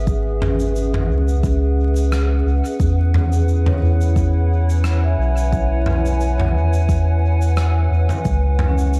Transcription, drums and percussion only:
0.07 kick, shaker
0.42 mid tom
0.60 shaker
0.76 shaker
0.94 mid tom
1.28 shaker
1.43 kick, shaker
1.96 shaker
2.12 cross-stick, shaker
2.65 shaker
2.80 kick, shaker
3.14 mid tom
3.32 shaker
3.48 shaker
3.66 mid tom
4.01 shaker
4.16 kick, shaker
4.70 shaker
4.84 cross-stick, shaker
5.37 shaker
5.52 kick, shaker
5.86 mid tom
6.06 shaker
6.21 shaker
6.40 mid tom
6.73 shaker
6.89 kick, shaker
7.42 shaker
7.57 cross-stick, shaker
8.09 mid tom, shaker
8.25 kick, shaker
8.59 mid tom
8.78 shaker
8.93 shaker

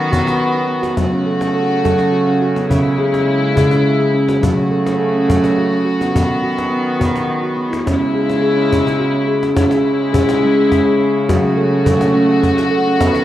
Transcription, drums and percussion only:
0.13 cajon bass
0.27 cajon slap
0.83 cajon slap
0.97 cajon bass, cajon slap
1.12 cajon slap
1.41 cajon slap
1.56 cajon slap
1.71 cajon slap
1.85 cajon bass, cajon slap
1.99 cajon slap
2.56 cajon slap
2.71 cajon bass
3.00 cajon slap
3.14 cajon slap
3.57 cajon bass
3.71 cajon slap
4.29 cajon slap
4.43 cajon bass
4.72 cajon slap
4.87 cajon slap
5.29 cajon bass
5.44 cajon slap
6.01 cajon slap
6.16 cajon bass
6.44 cajon slap
6.58 cajon slap
7.01 cajon bass
7.16 cajon slap
7.73 cajon slap
7.87 cajon bass, cajon slap
8.01 cajon slap
8.29 cajon slap
8.73 cajon bass
8.87 cajon slap
9.01 cajon slap
9.29 cajon slap
9.43 cajon slap
9.57 cajon bass, cajon slap
9.71 cajon slap
9.86 cajon slap
10.14 cajon bass
10.29 cajon slap
10.72 cajon bass, cajon slap
11.01 cajon slap
11.29 cajon bass, cajon slap
11.58 cajon slap
11.86 cajon bass
12.01 cajon slap
12.43 cajon bass, cajon slap
12.58 cajon slap
12.72 cajon slap
13.01 cajon bass, cajon slap
13.15 cajon slap

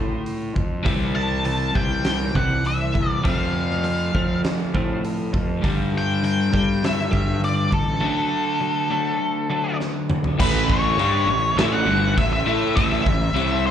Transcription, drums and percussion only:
0.26 open hi-hat
0.56 kick
0.86 kick, open hi-hat
1.45 open hi-hat
1.75 kick
2.05 snare, open hi-hat
2.35 kick
2.65 open hi-hat
2.95 kick
3.25 kick, open hi-hat
3.70 snare
3.84 open hi-hat
4.15 kick
4.44 snare, open hi-hat
4.75 kick
5.05 open hi-hat
5.34 kick
5.64 kick, open hi-hat
6.24 open hi-hat
6.54 kick
6.84 snare, open hi-hat
7.13 kick
7.44 open hi-hat
7.72 kick
9.80 snare
10.10 mid tom
10.24 floor tom
10.40 kick, crash
10.70 kick
10.99 crash
11.58 snare, crash
12.17 kick, crash
12.77 kick, crash
12.92 snare
13.06 kick
13.36 crash

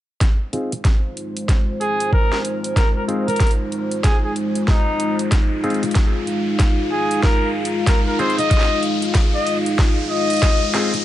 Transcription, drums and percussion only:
0.21 kick, snare, closed hi-hat
0.53 closed hi-hat
0.72 closed hi-hat
0.85 kick, snare, closed hi-hat
1.17 closed hi-hat
1.37 closed hi-hat
1.49 kick, snare, closed hi-hat
1.81 closed hi-hat
2.00 closed hi-hat
2.13 kick
2.32 snare
2.45 closed hi-hat
2.64 closed hi-hat
2.77 kick, snare, closed hi-hat
3.09 closed hi-hat
3.28 closed hi-hat
3.36 closed hi-hat
3.40 kick, snare, closed hi-hat
3.47 closed hi-hat
3.51 closed hi-hat
3.72 closed hi-hat
3.91 closed hi-hat
4.04 kick, snare, closed hi-hat
4.36 closed hi-hat
4.55 closed hi-hat
4.68 kick, snare
5.00 closed hi-hat
5.19 closed hi-hat
5.32 kick, snare, closed hi-hat
5.64 closed hi-hat
5.70 closed hi-hat
5.74 closed hi-hat
5.83 closed hi-hat
5.85 closed hi-hat
5.91 closed hi-hat
5.95 kick, snare, closed hi-hat
6.27 closed hi-hat
6.59 kick, snare, closed hi-hat
7.11 closed hi-hat
7.23 kick, snare
7.65 closed hi-hat
7.87 kick, snare, closed hi-hat
8.19 closed hi-hat
8.30 closed hi-hat
8.38 closed hi-hat
8.40 closed hi-hat
8.51 kick, snare, closed hi-hat
8.57 snare
8.61 snare
8.83 closed hi-hat
9.02 closed hi-hat
9.14 kick, snare, closed hi-hat
9.46 closed hi-hat
9.66 closed hi-hat
9.79 kick, snare
10.30 closed hi-hat
10.33 closed hi-hat
10.37 closed hi-hat
10.39 snare, closed hi-hat
10.43 kick, closed hi-hat
10.52 closed hi-hat
10.57 closed hi-hat
10.74 snare, closed hi-hat
10.94 closed hi-hat

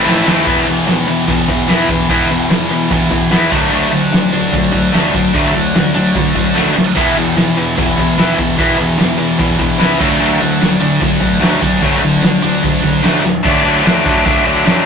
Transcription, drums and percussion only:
0.08 snare
0.28 snare
0.47 kick, crash
0.68 open hi-hat
0.88 snare, open hi-hat
1.08 open hi-hat
1.28 kick, open hi-hat
1.48 kick, open hi-hat
1.69 snare, open hi-hat
1.89 kick, open hi-hat
2.09 kick, open hi-hat
2.30 open hi-hat
2.50 snare, open hi-hat
2.71 open hi-hat
2.91 kick, open hi-hat
3.11 kick, open hi-hat
3.32 snare, open hi-hat
3.52 kick, open hi-hat
3.73 open hi-hat
3.93 open hi-hat
4.13 snare, open hi-hat
4.33 open hi-hat
4.53 kick, open hi-hat
4.74 kick, open hi-hat
4.94 snare, open hi-hat
5.14 kick, open hi-hat
5.35 kick, open hi-hat
5.55 open hi-hat
5.75 snare, open hi-hat
5.95 open hi-hat
6.15 kick, open hi-hat
6.36 kick, open hi-hat
6.57 snare
6.78 snare
6.96 kick, crash
7.17 open hi-hat
7.37 snare, open hi-hat
7.58 open hi-hat
7.78 kick, open hi-hat
7.98 kick, open hi-hat
8.18 snare, open hi-hat
8.39 kick, open hi-hat
8.59 kick, open hi-hat
8.79 open hi-hat
9.00 snare, open hi-hat
9.20 open hi-hat
9.40 kick, open hi-hat
9.60 kick, open hi-hat
9.80 snare, open hi-hat
10.01 kick, crash
10.41 open hi-hat
10.62 snare, open hi-hat
10.81 open hi-hat
11.02 kick, open hi-hat
11.22 kick, open hi-hat
11.42 snare, open hi-hat
11.62 kick, open hi-hat
11.83 kick, open hi-hat
12.03 open hi-hat
12.23 snare, open hi-hat
12.43 open hi-hat
12.64 kick, open hi-hat
12.84 kick, open hi-hat
13.04 snare, open hi-hat
13.26 snare
13.45 kick, crash
13.86 snare, open hi-hat
14.06 kick
14.26 kick, open hi-hat
14.66 snare, open hi-hat

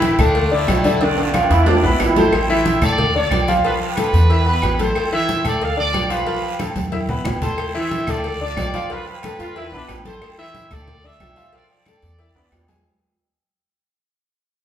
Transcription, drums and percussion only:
0.02 cowbell, high conga, low timbale, low agogo, short guiro
0.19 cowbell, high conga, low conga, low agogo, short guiro, claves
0.35 cowbell, high conga, long guiro
0.52 high conga
0.68 cowbell, high conga, low timbale, low agogo, short guiro, claves
0.84 cowbell, high conga, low agogo, short guiro
1.01 cowbell, high conga, high timbale, long guiro
1.18 high conga, high timbale, low agogo
1.34 cowbell, high conga, low agogo, short guiro, claves
1.51 cowbell, high timbale, short guiro
1.66 cowbell, high conga, low timbale, low agogo, long guiro
1.84 high conga, low timbale
2.00 cowbell, high conga, low timbale, low agogo, short guiro, claves
2.16 cowbell, high conga, low timbale, low agogo, short guiro
2.32 cowbell, high conga, low agogo, long guiro, claves
2.49 high conga
2.65 cowbell, high conga, low timbale, low agogo, short guiro
2.82 cowbell, high conga, low conga, low agogo, short guiro, claves
2.98 cowbell, high conga, low conga, long guiro
3.15 high conga
3.31 cowbell, high conga, low timbale, low agogo, short guiro, claves
3.48 cowbell, high conga, low agogo, short guiro
3.64 cowbell, high conga, long guiro
3.81 high conga, low agogo
3.97 cowbell, high conga, low timbale, low agogo, short guiro, claves
4.14 cowbell, short guiro
4.30 cowbell, high conga, low agogo, long guiro
4.47 high conga
4.62 cowbell, high conga, low timbale, low agogo, short guiro, claves
4.79 cowbell, high conga, low agogo, short guiro
4.95 cowbell, high conga, low agogo, long guiro, claves
5.13 high conga
5.28 cowbell, high conga, low timbale, low agogo, short guiro
5.44 cowbell, high conga, low conga, low agogo, short guiro, claves
5.61 cowbell, high conga, long guiro
5.78 high conga
5.94 cowbell, high conga, low timbale, low agogo, short guiro, claves
6.10 cowbell, low agogo, short guiro
6.26 cowbell, high conga, long guiro
6.43 high conga, low agogo
6.59 cowbell, high conga, low timbale, low agogo, short guiro, claves
6.76 cowbell, high conga, short guiro
6.92 cowbell, high conga, low agogo, long guiro
7.09 low conga
7.25 cowbell, low conga, low timbale, low agogo, short guiro, claves
7.42 cowbell, low conga, low agogo, short guiro
7.58 cowbell, high conga, low agogo, long guiro, claves
7.75 high conga
7.91 cowbell, high conga, low timbale, low agogo, short guiro
8.07 cowbell, high conga, low conga, low agogo, short guiro, claves
8.24 cowbell, high conga, long guiro
8.41 high conga
8.57 cowbell, high conga, low timbale, low agogo, short guiro, claves
8.74 cowbell, high conga, low agogo, short guiro
8.90 cowbell, high conga, long guiro
9.06 high conga, low agogo
9.23 cowbell, high conga, low timbale, low agogo, short guiro, claves
9.40 cowbell, short guiro
9.56 cowbell, high conga, low agogo, long guiro
9.73 high conga
9.88 cowbell, high conga, low timbale, low agogo, short guiro, claves
10.05 cowbell, high conga, low agogo, short guiro
10.22 cowbell, high conga, low agogo, long guiro, claves
10.38 high conga
10.55 cowbell, high conga, low timbale, low agogo, short guiro
10.71 cowbell, high conga, low conga, low agogo, short guiro, claves
10.87 cowbell, high conga, low conga, long guiro
11.04 high conga
11.20 cowbell, high conga, low timbale, low agogo, short guiro, claves
11.36 cowbell, low agogo, short guiro
11.53 cowbell, high conga, long guiro
11.70 high conga, low agogo
11.86 cowbell, high conga, low timbale, low agogo, short guiro, claves
12.02 cowbell, short guiro
12.19 cowbell, low agogo, long guiro
12.36 high conga, high timbale
12.52 cowbell, high conga, low timbale, low agogo, short guiro, claves
12.68 cowbell, high conga, low timbale, low agogo, short guiro

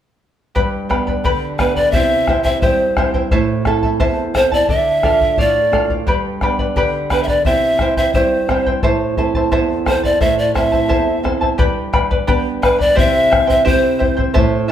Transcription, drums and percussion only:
0.56 bombo low
0.91 bombo rim, bombo low
1.08 bombo low
1.25 bombo low
1.59 bombo rim, bombo low
1.76 bombo low
1.93 bombo low
2.28 bombo rim, bombo low
2.45 bombo low
2.62 bombo low
2.97 bombo rim, bombo low
3.14 bombo low
3.31 bombo low
3.65 bombo rim, bombo low
3.83 bombo low
4.00 bombo low
4.35 bombo rim, bombo low
4.52 bombo low
4.69 bombo low
5.03 bombo rim, bombo low
5.21 bombo low
5.38 bombo low
5.73 bombo rim, bombo low
5.90 bombo low
6.07 bombo low
6.41 bombo rim, bombo low
6.59 bombo low
6.76 bombo low
7.10 bombo rim, bombo low
7.28 bombo low
7.45 bombo low
7.79 bombo rim, bombo low
7.97 bombo low
8.14 bombo low
8.49 bombo rim, bombo low
8.66 bombo low
8.83 bombo low
9.17 bombo low
9.34 bombo low
9.52 bombo low
9.86 bombo rim, bombo low
10.04 bombo low
10.21 bombo low
10.55 bombo rim, bombo low
10.73 bombo low
10.90 bombo low
11.25 bombo rim, bombo low
11.42 bombo low
11.59 bombo low
11.94 bombo rim, bombo low
12.11 bombo low
12.28 bombo low
12.63 bombo rim, bombo low
12.80 bombo low
12.98 bombo low
13.33 bombo rim, bombo low
13.50 bombo low
13.67 bombo low
14.01 bombo low
14.19 bombo low
14.36 bombo low

